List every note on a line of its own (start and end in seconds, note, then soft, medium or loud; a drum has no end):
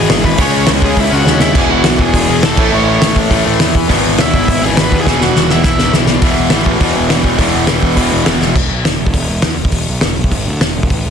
0.00 0.37 E2 loud
0.00 0.37 B2 loud
0.00 0.11 E3 medium
0.00 0.39 E3 loud
0.00 0.21 G#4 medium
0.00 0.24 G#5 loud
0.08 0.22 G#1 medium
0.08 0.37 E2 medium
0.08 0.37 B2 medium
0.08 0.39 E3 loud
0.08 snare loud
0.08 open hi-hat medium
0.24 0.37 G#1 loud
0.24 0.38 B4 medium
0.24 0.41 B5 loud
0.24 kick medium
0.38 0.64 C#2 loud
0.38 1.10 C#3 medium
0.38 1.10 G#3 loud
0.38 1.09 C#4 loud
0.38 0.67 C#5 medium
0.38 0.69 C#6 loud
0.38 kick loud
0.38 open hi-hat medium
0.67 0.94 C#2 medium
0.67 snare loud
0.67 open hi-hat medium
0.82 0.97 G#4 medium
0.82 0.97 G#5 medium
0.82 kick medium
0.97 1.10 C#2 medium
0.97 1.12 E4 medium
0.97 1.13 E5 medium
0.97 kick loud
0.97 open hi-hat medium
1.10 1.25 C#2 medium
1.10 1.23 C#3 medium
1.10 1.24 G#3 medium
1.10 1.25 C#4 medium
1.10 1.40 F#4 medium
1.10 1.39 F#5 loud
1.24 1.51 D#2 medium
1.24 1.54 C#3 medium
1.24 1.54 G#3 medium
1.24 1.55 C#4 medium
1.24 snare medium
1.40 1.54 E4 medium
1.40 1.56 E5 medium
1.40 snare medium
1.52 1.68 E1 loud
1.52 2.26 E2 loud
1.52 2.27 B2 medium
1.52 2.27 E3 loud
1.52 kick loud
1.52 splash medium
1.52 crash loud
1.57 1.70 G#4 medium
1.57 1.71 G#5 loud
1.69 1.82 E1 medium
1.69 1.98 F#4 medium
1.69 2.01 F#5 medium
1.84 1.97 B1 medium
1.84 snare loud
1.84 open hi-hat medium
1.99 2.12 E1 loud
1.99 2.41 G#4 medium
1.99 2.45 G#5 medium
1.99 kick medium
2.14 2.26 E1 medium
2.14 kick medium
2.14 open hi-hat medium
2.28 2.41 E1 medium
2.28 2.42 E2 medium
2.28 2.42 B2 medium
2.28 2.45 E3 medium
2.43 2.57 E1 medium
2.43 2.57 E2 medium
2.43 2.56 B2 medium
2.43 2.57 E3 medium
2.43 2.71 A4 medium
2.43 2.74 A5 medium
2.43 snare loud
2.43 open hi-hat medium
2.56 2.70 A1 medium
2.56 3.28 A2 loud
2.56 3.30 E3 medium
2.56 3.30 A3 loud
2.56 kick loud
2.56 crash loud
2.73 2.98 A1 loud
2.73 2.87 C#5 medium
2.73 2.87 C#6 loud
2.88 3.15 C#5 medium
2.88 3.15 C#6 medium
3.02 3.27 A1 medium
3.02 snare loud
3.02 open hi-hat medium
3.16 kick medium
3.29 3.43 A1 loud
3.29 3.44 A2 medium
3.29 3.45 E3 medium
3.29 3.43 A3 medium
3.29 kick loud
3.29 open hi-hat medium
3.44 3.59 A1 medium
3.44 3.74 A2 medium
3.44 3.91 E3 medium
3.44 3.73 A3 medium
3.60 3.85 E2 medium
3.60 snare loud
3.60 open hi-hat medium
3.75 kick medium
3.88 4.02 G#1 loud
3.88 4.61 E2 loud
3.88 4.62 B2 loud
3.88 4.61 E3 loud
3.88 kick loud
3.88 open hi-hat medium
4.05 4.17 G#1 medium
4.19 4.32 D#2 medium
4.19 4.33 E4 medium
4.19 4.34 E5 loud
4.19 snare loud
4.19 open hi-hat medium
4.34 4.46 G#1 medium
4.34 4.61 E4 medium
4.34 4.64 E5 medium
4.34 kick medium
4.48 4.60 G#1 loud
4.48 kick loud
4.48 open hi-hat medium
4.62 4.75 G#1 medium
4.62 4.75 E2 medium
4.62 4.76 B2 medium
4.62 4.79 E3 medium
4.62 4.77 G#4 medium
4.66 4.81 G#5 loud
4.76 4.89 G#1 loud
4.76 5.04 E2 medium
4.76 5.06 B2 medium
4.76 5.08 E3 medium
4.76 4.98 B4 medium
4.76 snare loud
4.76 open hi-hat medium
4.81 5.01 B5 loud
4.92 5.04 D#2 medium
4.92 kick medium
5.00 5.05 G#4 medium
5.00 5.07 G#5 medium
5.05 5.32 E1 loud
5.05 5.77 E2 loud
5.05 5.78 B2 medium
5.05 5.78 E3 loud
5.05 5.19 G#4 medium
5.05 5.23 G#5 loud
5.05 kick loud
5.05 snare medium
5.21 5.48 F#4 medium
5.21 5.51 F#5 loud
5.21 snare medium
5.36 5.60 E1 medium
5.36 snare medium
5.50 5.91 E4 medium
5.50 5.91 E5 medium
5.50 snare medium
5.64 5.77 E1 medium
5.64 kick loud
5.64 snare medium
5.79 5.91 E1 medium
5.79 5.91 E2 medium
5.79 5.93 B2 medium
5.79 5.92 E3 medium
5.79 snare medium
5.93 6.18 B1 medium
5.93 6.21 E2 medium
5.93 6.22 B2 medium
5.93 6.22 E3 medium
5.93 snare loud
6.07 snare medium
6.22 6.35 E1 medium
6.22 6.53 E2 medium
6.22 6.51 B2 medium
6.22 6.51 E3 loud
6.22 kick loud
6.22 open hi-hat medium
6.38 6.50 E1 medium
6.50 6.76 A1 medium
6.50 6.80 E2 medium
6.50 6.80 B2 loud
6.50 6.81 E3 loud
6.50 snare loud
6.50 open hi-hat medium
6.66 kick medium
6.80 7.10 E2 loud
6.80 6.93 E2 loud
6.80 7.09 B2 loud
6.80 7.10 E3 loud
6.80 kick loud
6.80 open hi-hat medium
6.96 7.08 E1 medium
7.10 7.23 E1 medium
7.10 7.38 E2 medium
7.10 7.39 B2 medium
7.10 7.40 E3 loud
7.10 snare loud
7.10 open hi-hat medium
7.24 7.37 E1 medium
7.24 kick medium
7.38 7.51 E1 medium
7.38 7.67 E2 loud
7.38 7.67 B2 loud
7.38 7.66 E3 loud
7.38 kick loud
7.38 open hi-hat medium
7.54 7.66 E1 medium
7.67 7.81 E1 medium
7.67 7.95 E2 medium
7.67 7.95 B2 loud
7.67 7.96 E3 loud
7.67 snare loud
7.67 open hi-hat medium
7.83 7.95 E1 medium
7.83 kick medium
7.96 8.10 E1 medium
7.96 8.25 E2 medium
7.96 8.25 B2 medium
7.96 8.24 E3 loud
7.96 kick loud
7.96 open hi-hat medium
8.12 8.24 E1 medium
8.25 8.39 E1 medium
8.25 8.55 E2 medium
8.25 8.55 B2 medium
8.25 8.54 E3 medium
8.25 snare loud
8.25 open hi-hat medium
8.40 8.53 E1 medium
8.40 snare medium
8.56 8.69 E1 medium
8.56 kick loud
8.56 crash loud
8.70 8.83 B1 medium
8.85 8.98 E1 medium
8.85 snare loud
8.85 open hi-hat medium
9.00 9.13 E1 medium
9.07 kick medium
9.14 9.27 E1 medium
9.14 kick medium
9.14 open hi-hat medium
9.29 9.42 E1 medium
9.42 9.57 E2 medium
9.42 snare loud
9.42 open hi-hat medium
9.59 9.72 E1 medium
9.65 kick medium
9.72 9.86 E1 loud
9.72 kick medium
9.72 open hi-hat medium
9.88 10.01 B1 medium
10.01 10.16 E1 medium
10.01 snare loud
10.01 open hi-hat medium
10.17 10.30 B1 medium
10.24 kick medium
10.32 10.45 G#1 medium
10.32 kick medium
10.32 open hi-hat medium
10.47 10.60 D2 medium
10.61 10.74 E1 medium
10.61 snare loud
10.61 open hi-hat medium
10.76 10.89 E1 medium
10.83 kick medium
10.90 11.04 A1 medium
10.90 kick medium
10.90 open hi-hat soft
11.06 11.10 E1 medium